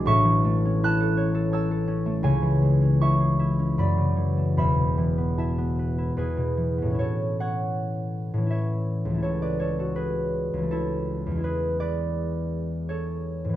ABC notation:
X:1
M:3/4
L:1/16
Q:1/4=81
K:A
V:1 name="Harp"
[ec'e']4 [af']4 [ae']4 | [cg]4 [ec']4 [db]4 | [eb]4 [ea]4 [GB]4 | [Ac]2 [cf]6 [ce]4 |
[Ac] [Bd] [Ac] [FA] [GB]4 [EA]4 | [GB]2 [Bd]6 [Ac]4 |]
V:2 name="Harp"
[A,,,A,,E] E, A, C E A c A c A C A, | [C,,C,] E, G, C E G E C F,, C, E, A, | [E,,,E,,] B,, E, B, E B, B E E,, B,, E, B, | [A,,E,CE]8 [A,,E,CE]4 |
[C,,E,A,E]8 [C,,E,A,]4 | [E,,E,G,E]12 |]